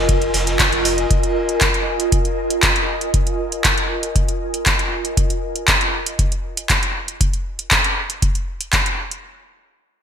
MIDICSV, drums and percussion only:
0, 0, Header, 1, 2, 480
1, 0, Start_track
1, 0, Key_signature, -4, "minor"
1, 0, Tempo, 508475
1, 1043, Time_signature, 4, 2, 24, 8
1, 9465, End_track
2, 0, Start_track
2, 0, Title_t, "Drums"
2, 83, Note_on_c, 9, 42, 71
2, 84, Note_on_c, 9, 36, 118
2, 86, Note_on_c, 9, 51, 80
2, 178, Note_off_c, 9, 36, 0
2, 178, Note_off_c, 9, 42, 0
2, 181, Note_off_c, 9, 51, 0
2, 199, Note_on_c, 9, 51, 40
2, 204, Note_on_c, 9, 42, 34
2, 294, Note_off_c, 9, 51, 0
2, 299, Note_off_c, 9, 42, 0
2, 318, Note_on_c, 9, 51, 70
2, 319, Note_on_c, 9, 38, 52
2, 323, Note_on_c, 9, 46, 103
2, 412, Note_off_c, 9, 51, 0
2, 413, Note_off_c, 9, 38, 0
2, 418, Note_off_c, 9, 46, 0
2, 445, Note_on_c, 9, 42, 49
2, 447, Note_on_c, 9, 38, 35
2, 539, Note_off_c, 9, 42, 0
2, 541, Note_off_c, 9, 38, 0
2, 560, Note_on_c, 9, 39, 113
2, 564, Note_on_c, 9, 36, 104
2, 564, Note_on_c, 9, 42, 74
2, 566, Note_on_c, 9, 51, 90
2, 574, Note_on_c, 9, 38, 103
2, 654, Note_off_c, 9, 39, 0
2, 658, Note_off_c, 9, 36, 0
2, 658, Note_off_c, 9, 42, 0
2, 660, Note_off_c, 9, 51, 0
2, 668, Note_off_c, 9, 38, 0
2, 684, Note_on_c, 9, 42, 34
2, 779, Note_off_c, 9, 42, 0
2, 803, Note_on_c, 9, 51, 63
2, 804, Note_on_c, 9, 46, 105
2, 897, Note_off_c, 9, 51, 0
2, 898, Note_off_c, 9, 46, 0
2, 924, Note_on_c, 9, 42, 35
2, 1019, Note_off_c, 9, 42, 0
2, 1044, Note_on_c, 9, 36, 115
2, 1044, Note_on_c, 9, 42, 73
2, 1138, Note_off_c, 9, 36, 0
2, 1138, Note_off_c, 9, 42, 0
2, 1165, Note_on_c, 9, 42, 34
2, 1259, Note_off_c, 9, 42, 0
2, 1405, Note_on_c, 9, 42, 34
2, 1499, Note_off_c, 9, 42, 0
2, 1520, Note_on_c, 9, 39, 114
2, 1524, Note_on_c, 9, 36, 100
2, 1524, Note_on_c, 9, 42, 76
2, 1614, Note_off_c, 9, 39, 0
2, 1618, Note_off_c, 9, 36, 0
2, 1618, Note_off_c, 9, 42, 0
2, 1645, Note_on_c, 9, 42, 33
2, 1739, Note_off_c, 9, 42, 0
2, 1885, Note_on_c, 9, 42, 49
2, 1980, Note_off_c, 9, 42, 0
2, 2004, Note_on_c, 9, 36, 113
2, 2004, Note_on_c, 9, 42, 72
2, 2098, Note_off_c, 9, 36, 0
2, 2098, Note_off_c, 9, 42, 0
2, 2124, Note_on_c, 9, 42, 33
2, 2219, Note_off_c, 9, 42, 0
2, 2364, Note_on_c, 9, 42, 47
2, 2459, Note_off_c, 9, 42, 0
2, 2479, Note_on_c, 9, 39, 108
2, 2483, Note_on_c, 9, 42, 74
2, 2484, Note_on_c, 9, 36, 101
2, 2574, Note_off_c, 9, 39, 0
2, 2577, Note_off_c, 9, 42, 0
2, 2578, Note_off_c, 9, 36, 0
2, 2604, Note_on_c, 9, 42, 35
2, 2698, Note_off_c, 9, 42, 0
2, 2844, Note_on_c, 9, 42, 34
2, 2938, Note_off_c, 9, 42, 0
2, 2963, Note_on_c, 9, 36, 111
2, 2963, Note_on_c, 9, 42, 77
2, 3058, Note_off_c, 9, 36, 0
2, 3058, Note_off_c, 9, 42, 0
2, 3084, Note_on_c, 9, 42, 34
2, 3178, Note_off_c, 9, 42, 0
2, 3324, Note_on_c, 9, 42, 37
2, 3419, Note_off_c, 9, 42, 0
2, 3440, Note_on_c, 9, 39, 112
2, 3443, Note_on_c, 9, 36, 100
2, 3443, Note_on_c, 9, 42, 78
2, 3534, Note_off_c, 9, 39, 0
2, 3538, Note_off_c, 9, 36, 0
2, 3538, Note_off_c, 9, 42, 0
2, 3564, Note_on_c, 9, 42, 36
2, 3659, Note_off_c, 9, 42, 0
2, 3805, Note_on_c, 9, 42, 49
2, 3899, Note_off_c, 9, 42, 0
2, 3923, Note_on_c, 9, 36, 110
2, 3924, Note_on_c, 9, 42, 74
2, 4018, Note_off_c, 9, 36, 0
2, 4018, Note_off_c, 9, 42, 0
2, 4045, Note_on_c, 9, 42, 34
2, 4139, Note_off_c, 9, 42, 0
2, 4285, Note_on_c, 9, 42, 50
2, 4379, Note_off_c, 9, 42, 0
2, 4400, Note_on_c, 9, 39, 112
2, 4403, Note_on_c, 9, 36, 97
2, 4404, Note_on_c, 9, 42, 78
2, 4494, Note_off_c, 9, 39, 0
2, 4498, Note_off_c, 9, 36, 0
2, 4498, Note_off_c, 9, 42, 0
2, 4524, Note_on_c, 9, 42, 35
2, 4619, Note_off_c, 9, 42, 0
2, 4765, Note_on_c, 9, 42, 35
2, 4859, Note_off_c, 9, 42, 0
2, 4883, Note_on_c, 9, 36, 110
2, 4884, Note_on_c, 9, 42, 77
2, 4978, Note_off_c, 9, 36, 0
2, 4978, Note_off_c, 9, 42, 0
2, 5005, Note_on_c, 9, 42, 35
2, 5099, Note_off_c, 9, 42, 0
2, 5245, Note_on_c, 9, 42, 37
2, 5339, Note_off_c, 9, 42, 0
2, 5360, Note_on_c, 9, 39, 112
2, 5363, Note_on_c, 9, 36, 99
2, 5364, Note_on_c, 9, 42, 79
2, 5454, Note_off_c, 9, 39, 0
2, 5457, Note_off_c, 9, 36, 0
2, 5458, Note_off_c, 9, 42, 0
2, 5485, Note_on_c, 9, 42, 36
2, 5579, Note_off_c, 9, 42, 0
2, 5725, Note_on_c, 9, 42, 51
2, 5819, Note_off_c, 9, 42, 0
2, 5843, Note_on_c, 9, 36, 104
2, 5844, Note_on_c, 9, 42, 77
2, 5938, Note_off_c, 9, 36, 0
2, 5938, Note_off_c, 9, 42, 0
2, 5965, Note_on_c, 9, 42, 36
2, 6059, Note_off_c, 9, 42, 0
2, 6205, Note_on_c, 9, 42, 52
2, 6299, Note_off_c, 9, 42, 0
2, 6320, Note_on_c, 9, 39, 109
2, 6323, Note_on_c, 9, 36, 93
2, 6324, Note_on_c, 9, 42, 76
2, 6415, Note_off_c, 9, 39, 0
2, 6417, Note_off_c, 9, 36, 0
2, 6419, Note_off_c, 9, 42, 0
2, 6445, Note_on_c, 9, 42, 37
2, 6539, Note_off_c, 9, 42, 0
2, 6685, Note_on_c, 9, 42, 37
2, 6779, Note_off_c, 9, 42, 0
2, 6803, Note_on_c, 9, 36, 110
2, 6803, Note_on_c, 9, 42, 80
2, 6898, Note_off_c, 9, 36, 0
2, 6898, Note_off_c, 9, 42, 0
2, 6924, Note_on_c, 9, 42, 35
2, 7019, Note_off_c, 9, 42, 0
2, 7164, Note_on_c, 9, 42, 37
2, 7259, Note_off_c, 9, 42, 0
2, 7279, Note_on_c, 9, 39, 118
2, 7283, Note_on_c, 9, 36, 94
2, 7283, Note_on_c, 9, 42, 79
2, 7374, Note_off_c, 9, 39, 0
2, 7377, Note_off_c, 9, 42, 0
2, 7378, Note_off_c, 9, 36, 0
2, 7404, Note_on_c, 9, 42, 37
2, 7499, Note_off_c, 9, 42, 0
2, 7644, Note_on_c, 9, 42, 50
2, 7738, Note_off_c, 9, 42, 0
2, 7763, Note_on_c, 9, 36, 106
2, 7763, Note_on_c, 9, 42, 79
2, 7858, Note_off_c, 9, 36, 0
2, 7858, Note_off_c, 9, 42, 0
2, 7884, Note_on_c, 9, 42, 36
2, 7978, Note_off_c, 9, 42, 0
2, 8124, Note_on_c, 9, 42, 52
2, 8218, Note_off_c, 9, 42, 0
2, 8239, Note_on_c, 9, 39, 114
2, 8243, Note_on_c, 9, 36, 94
2, 8243, Note_on_c, 9, 42, 78
2, 8334, Note_off_c, 9, 39, 0
2, 8337, Note_off_c, 9, 42, 0
2, 8338, Note_off_c, 9, 36, 0
2, 8364, Note_on_c, 9, 42, 37
2, 8459, Note_off_c, 9, 42, 0
2, 8604, Note_on_c, 9, 42, 36
2, 8698, Note_off_c, 9, 42, 0
2, 9465, End_track
0, 0, End_of_file